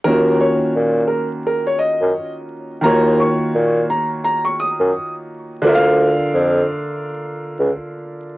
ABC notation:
X:1
M:4/4
L:1/16
Q:"Swing 16ths" 1/4=86
K:Bbm
V:1 name="Upright piano"
B2 d2 z2 B z B d e3 z3 | b2 d'2 z2 b z b d' e'3 z3 | z16 |]
V:2 name="Grand piano"
[E,B,DFG]16 | [E,B,FGd]16 | [=D,=DFB_f=f]16 |]
V:3 name="Bassoon" clef=bass
E,,3 z B,,2 z4 z G,, z4 | E,,3 z B,,2 z4 z G,, z4 | =D,,3 z F,,2 z4 z _D,, z4 |]